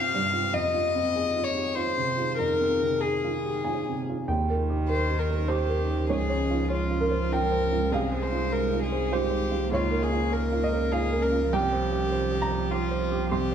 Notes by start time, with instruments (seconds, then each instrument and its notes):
Already playing: upright piano C2 G2 C4 F4 G4, ambient pad C4 F4 G4, violin F5
0.14 upright piano G2
0.33 upright piano F4
0.53 upright piano F2, ambient pad D#4 F4 G#4, violin D#5
0.74 upright piano F4
0.95 upright piano C4
1.16 upright piano G#4
1.37 upright piano F4
1.44 violin C#5
1.55 upright piano G4
1.76 upright piano F4, violin C5
1.98 upright piano C3
2.18 upright piano F4
2.38 upright piano F2, violin A#4
2.60 upright piano C4
2.81 upright piano C3
3.01 violin G#4, upright piano G#4
3.24 upright piano F4
3.45 upright piano G4
3.64 upright piano F4 G#5
3.88 upright piano C3
4.10 upright piano F4
4.28 sub bass D#2, upright piano D#2 G5, cello D#3, ambient pad C#4 D#4 A#4
4.50 upright piano A#4
4.70 upright piano G4
4.88 upright piano A#4, violin C5
5.10 upright piano G4
5.19 violin A#4
5.30 upright piano A#4
5.48 upright piano G4 C5, violin G4
5.69 upright piano A#4
5.90 upright piano G4
6.09 upright piano C#2 C#5, sub bass C#2, cello F3, ambient pad G#3 F4, violin G#4
6.29 upright piano C#5
6.51 upright piano F4
6.70 violin F4, upright piano C#5
6.91 upright piano F4
7.01 upright piano A#4
7.11 upright piano C5
7.32 upright piano F4 G5, violin A#4
7.52 upright piano C5
7.72 upright piano F4
7.92 upright piano C2 F5, sub bass C2, cello G#3, ambient pad D#4, violin G#4
8.12 upright piano C5
8.23 violin C5
8.32 upright piano F4
8.52 violin A#4, upright piano C5
8.72 upright piano F4
8.83 violin G#4
8.92 upright piano C5
9.12 upright piano F4 C5, violin G4
9.31 upright piano C5
9.52 upright piano F4
9.72 upright piano C#2 C#5, sub bass C#2, cello A#3, ambient pad C#4 A#4, violin F4
9.91 upright piano A#4
10.03 violin G#4
10.12 upright piano F4
10.32 upright piano A#4, violin A#4
10.52 upright piano F4
10.64 upright piano D#5
10.73 upright piano A#4
10.91 upright piano F4 F5, violin G#4
11.12 upright piano A#4
11.22 violin A#4
11.32 upright piano F4
11.51 sub bass C2, upright piano C2 G5, cello F3, ambient pad C4 F4 G5, violin G4
11.73 upright piano C5
11.92 upright piano G4
12.12 upright piano C5
12.31 upright piano G4
12.42 upright piano A#5
12.52 upright piano C5
12.71 violin F4, upright piano G4
12.91 upright piano C5
13.12 upright piano G4
13.30 upright piano C2 C6, violin G4
13.52 upright piano C5